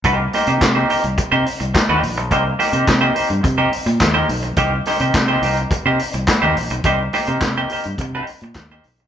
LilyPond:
<<
  \new Staff \with { instrumentName = "Clean electric guitar" } { \time 4/4 \key c \minor \tempo 4 = 106 <bes ees' g' c''>16 r16 <bes ees' g' c''>16 <bes ees' g' c''>16 r16 <bes ees' g' c''>16 <bes ees' g' c''>16 r8 <bes ees' g' c''>16 r8. <bes ees' g' c''>16 r8 | <bes ees' g' c''>16 r16 <bes ees' g' c''>16 <bes ees' g' c''>16 r16 <bes ees' g' c''>16 <bes ees' g' c''>16 r8 <bes ees' g' c''>16 r8. <bes ees' g' c''>16 r8 | <bes ees' g' c''>16 r16 <bes ees' g' c''>16 <bes ees' g' c''>16 r16 <bes ees' g' c''>16 <bes ees' g' c''>16 r8 <bes ees' g' c''>16 r8. <bes ees' g' c''>16 r8 | <bes ees' g' c''>16 r16 <bes ees' g' c''>16 <bes ees' g' c''>16 r16 <bes ees' g' c''>16 <bes ees' g' c''>16 r8 <bes ees' g' c''>16 r8. <bes ees' g' c''>16 r8 | }
  \new Staff \with { instrumentName = "Fingered electric bass" } { \clef bass \time 4/4 \key c \minor c,8 r16 c16 c8 r16 c,16 r16 c16 r16 c,16 r16 ees,16 bes,,16 b,,16 | c,8 r16 c16 c8 r16 g,16 c8 r16 bes,16 ees,8 b,,8 | c,8 r16 c16 c8 c,8 r16 c16 r16 c,16 r16 ees,16 bes,,16 b,,16 | c,8 r16 c16 r8. g,16 c8 r16 bes,16 ees,8 b,,8 | }
  \new DrumStaff \with { instrumentName = "Drums" } \drummode { \time 4/4 <hh bd>8 <hho sn>16 hh16 <hc hh bd sn>8 hho16 hh16 <hh bd>8 hho16 hh16 <hc hh bd sn>8 hho16 hh16 | <hh bd>8 <hho sn>16 hh16 <hc hh bd sn>8 hho16 hh16 <hh bd>8 hho16 hh16 <hc hh bd sn>8 hho16 hh16 | <hh bd>8 <hho sn>16 hh16 <hc hh bd sn>8 hho16 hh16 <hh bd>8 hho16 hh16 <hc hh bd sn>8 hho16 hh16 | <hh bd>8 <hho sn>16 hh16 <hc hh bd sn>8 hho16 hh16 <hh bd>8 hho16 hh16 <hc hh bd sn>8 hho16 hh16 | }
>>